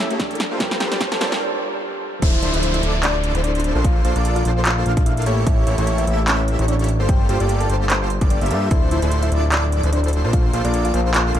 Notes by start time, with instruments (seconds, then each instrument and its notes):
Already playing: grand piano A3 E4 G4 A#4 C#5, riser
0.10 supersaw synth A#3 E4 G4 A4 C#5, closed hi-hat
0.19 synth pluck D4 D5, kick, snare, closed hi-hat
0.31 closed hi-hat
0.35 closed hi-hat
0.40 snare, closed hi-hat
0.51 supersaw synth A#3 F4 G4 A4 C5
0.58 grand piano G3 D4 F4 A4 A#4, synth pluck G4 G5, kick, snare, closed hi-hat
0.62 grand piano C5
0.71 snare
0.80 supersaw synth A#3 F4 G4 A4 C5, synth pluck G4 G5, snare, closed hi-hat
0.91 supersaw synth A#3 F4 G4 A4 D5, snare, closed hi-hat
1.01 kick, snare, closed hi-hat
1.12 synth pluck A4 A5, snare, closed hi-hat
1.20 grand piano G3 D4 F4 A4 A#4 C5, supersaw synth A#3 F4 G4 A4 C5, snare, closed hi-hat
1.32 snare
1.39 grand piano G3 D4 F4 A4 A#4 C5
2.22 analog synth bass D1, supersaw synth F3 D4 E4 A4 C5, synth pluck E4 E5, digital synth lead C5, kick, closed hi-hat, crash, downlifter
2.42 analog synth bass D1, supersaw synth F3 D4 E4 A4 C5, synth pluck E4 E5, digital synth lead C5, closed hi-hat
2.54 analog synth bass D1, supersaw synth F3 D4 E4 A4 C5, digital synth lead C5, closed hi-hat
2.63 closed hi-hat
2.74 synth pluck E4 E5, closed hi-hat
2.83 analog synth bass D1, supersaw synth F3 D4 E4 A4 D5, digital synth lead D5, closed hi-hat
3.03 synth pluck D4 D5, clap, closed hi-hat
3.24 closed hi-hat
3.35 analog synth bass D1, supersaw synth F3 D4 E4 A4 C5, digital synth lead C5, closed hi-hat
3.44 synth pluck D4 D5, closed hi-hat
3.55 closed hi-hat
3.60 closed hi-hat
3.64 closed hi-hat
3.75 analog synth bass A#1, supersaw synth A#3 D4 F4 A4 C5, digital synth lead C5
3.84 synth pluck F4 F5, kick, closed hi-hat
4.05 analog synth bass A#1, supersaw synth A#3 D4 F4 A4 C5, synth pluck F4 F5, digital synth lead C5, closed hi-hat
4.16 analog synth bass A#1, supersaw synth A#3 D4 F4 A4 D5, digital synth lead D5, closed hi-hat
4.25 closed hi-hat
4.36 synth pluck F4 F5, closed hi-hat
4.45 analog synth bass A#1, supersaw synth A#3 D4 F4 A4 C5, digital synth lead C5, closed hi-hat
4.65 synth pluck F4 F5, clap, closed hi-hat
4.86 analog synth bass A#1, supersaw synth A#3 D4 F4 A4 F5, digital synth lead F5, closed hi-hat
4.97 kick, closed hi-hat
5.06 synth pluck E4 E5, closed hi-hat
5.17 closed hi-hat
5.22 closed hi-hat
5.26 analog synth bass A1, supersaw synth A#3 E4 G4 A4 C#5, digital synth lead C#5, closed hi-hat
5.46 analog synth bass A1, supersaw synth E4 A4, synth pluck E4 E5, digital synth lead C#5, kick, closed hi-hat
5.67 analog synth bass A1, supersaw synth A#3 E4 G4 A4 C#5, synth pluck E4 E5, digital synth lead C#5, closed hi-hat
5.78 analog synth bass A1, supersaw synth A#3 E4 G4 A4 C#5, digital synth lead C#5, closed hi-hat
5.87 closed hi-hat
5.98 synth pluck E4 E5, closed hi-hat
6.07 analog synth bass A1, supersaw synth A#3 E4 G4 A4 E5, digital synth lead E5, closed hi-hat
6.28 synth pluck C#4 C#5, clap, closed hi-hat
6.48 closed hi-hat
6.59 analog synth bass A1, supersaw synth A#3 E4 G4 A4 C#5, digital synth lead C#5, closed hi-hat
6.68 synth pluck D4 D5, closed hi-hat
6.79 closed hi-hat
6.84 closed hi-hat
6.89 closed hi-hat
7.00 analog synth bass G1, supersaw synth A#3 F4 G4 A4 C5, digital synth lead C5
7.09 synth pluck G4 G5, kick, closed hi-hat
7.29 analog synth bass G1, supersaw synth A#3 F4 G4 A4 C5, synth pluck G4 G5, digital synth lead C5, closed hi-hat
7.40 analog synth bass G1, supersaw synth A#3 F4 G4 A4 D5, digital synth lead D5, closed hi-hat
7.49 closed hi-hat
7.60 synth pluck A4 A5, closed hi-hat
7.69 analog synth bass G1, supersaw synth A#3 F4 G4 A4 C5, digital synth lead C5, closed hi-hat
7.90 synth pluck C5 C6, clap, closed hi-hat
8.10 closed hi-hat
8.21 analog synth bass G1, supersaw synth A#3 F4 G4 A4 D5, digital synth lead D5, kick, closed hi-hat
8.30 synth pluck D5 D6, closed hi-hat
8.41 analog synth bass G1, supersaw synth A#3 F4 G4 A4 E5, digital synth lead E5, closed hi-hat
8.46 closed hi-hat
8.51 analog synth bass G2, supersaw synth A#3 F4 G4 A4 E5, digital synth lead E5, closed hi-hat
8.71 analog synth bass D1, supersaw synth D4, synth pluck E4 E5, digital synth lead C5, kick, closed hi-hat
8.91 analog synth bass D1, supersaw synth F3 D4 E4 A4 C5, synth pluck E4 E5, digital synth lead C5, closed hi-hat
9.02 analog synth bass D1, supersaw synth F3 D4 E4 A4 C5, digital synth lead C5, closed hi-hat
9.12 closed hi-hat
9.23 synth pluck E4 E5, closed hi-hat
9.32 analog synth bass D1, supersaw synth F3 D4 E4 A4 D5, digital synth lead D5, closed hi-hat
9.52 synth pluck D4 D5, clap, closed hi-hat
9.72 closed hi-hat
9.83 analog synth bass D1, supersaw synth F3 D4 E4 A4 C5, digital synth lead C5, closed hi-hat
9.93 synth pluck D4 D5, closed hi-hat
10.04 closed hi-hat
10.08 closed hi-hat
10.13 closed hi-hat
10.24 analog synth bass A#1, supersaw synth A#3 D4 F4 A4 C5, digital synth lead C5
10.33 synth pluck F4 F5, kick, closed hi-hat
10.53 analog synth bass A#1, supersaw synth A#3 D4 F4 A4 C5, synth pluck F4 F5, digital synth lead C5, closed hi-hat
10.65 analog synth bass A#1, supersaw synth A#3 D4 F4 A4 D5, digital synth lead D5, closed hi-hat
10.74 closed hi-hat
10.85 synth pluck F4 F5, closed hi-hat
10.94 analog synth bass A#1, supersaw synth A#3 D4 F4 A4 C5, digital synth lead C5, closed hi-hat
11.14 synth pluck F4 F5, clap, closed hi-hat
11.34 analog synth bass A#1, supersaw synth A#3 D4 F4 A4 F5, digital synth lead F5, closed hi-hat